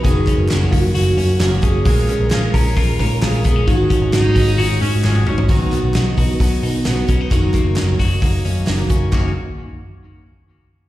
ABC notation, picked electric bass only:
X:1
M:4/4
L:1/16
Q:1/4=132
K:F#
V:1 name="Picked electric bass" clef=bass
F,,,2 z F,,, F,,,2 F,,,2 F,,,2 F,,2 F,,,2 F,,,2 | A,,,2 z A,,, A,,,2 A,,,2 A,,,2 A,,2 A,,,2 A,,,2 | G,,,2 z G,,, G,,,2 G,,,2 G,,,2 G,,2 G,,,2 G,,,2 | B,,,2 z B,,, B,,,2 B,,,2 B,,,2 B,,2 B,,,2 B,,,2 |
F,,,2 z F,,, F,,,2 F,,,2 F,,,2 F,,2 F,,,2 F,,,2 | F,,,2 z12 z2 |]